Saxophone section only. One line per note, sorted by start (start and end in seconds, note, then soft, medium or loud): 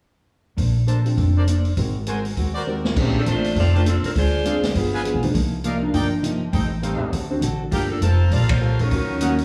3.00 3.15 D#3 medium
3.00 3.15 A3 medium
3.00 3.15 C4 medium
3.00 3.15 G4 medium
3.18 3.23 F3 medium
3.18 3.23 C4 medium
3.18 3.23 D4 medium
3.18 3.23 A4 medium
3.30 3.56 A3 medium
3.30 3.56 D4 medium
3.30 3.56 F4 medium
3.30 3.56 C5 medium
3.59 3.74 C4 medium
3.59 3.74 F4 medium
3.59 3.74 A4 medium
3.59 3.74 D5 medium
3.76 3.86 A3 medium
3.76 3.86 D4 medium
3.76 3.86 F4 medium
3.76 3.86 C5 medium
3.88 4.04 F3 medium
3.88 4.03 C4 medium
3.88 4.03 D4 medium
3.88 4.03 A4 medium
4.06 4.11 F3 medium
4.06 4.11 C4 medium
4.06 4.11 D4 medium
4.06 4.11 A#4 medium
4.17 4.72 G#3 medium
4.17 4.72 D4 medium
4.17 4.72 F4 medium
4.17 4.72 C5 medium
4.76 5.23 F3 medium
4.76 5.23 B3 medium
4.76 5.23 D4 medium
4.76 5.23 G#4 medium
7.73 7.89 F3 medium
7.73 7.90 A#3 medium
7.73 7.89 D4 medium
7.73 7.89 G4 medium
7.91 8.02 F3 medium
7.91 8.02 A#3 medium
7.91 8.02 D4 medium
7.91 8.02 A4 medium
8.03 8.32 A#3 medium
8.03 8.32 F4 medium
8.03 8.32 A4 medium
8.03 8.32 C5 medium
8.33 8.50 A#3 medium
8.33 8.50 F4 medium
8.33 8.50 A4 medium
8.33 8.50 D5 loud
8.51 8.80 A#3 medium
8.51 8.80 F4 medium
8.51 8.80 A4 medium
8.51 8.80 C5 medium
8.81 9.45 F#3 medium
8.81 9.45 C#4 medium
8.81 9.45 D#4 medium
8.81 9.45 A#4 medium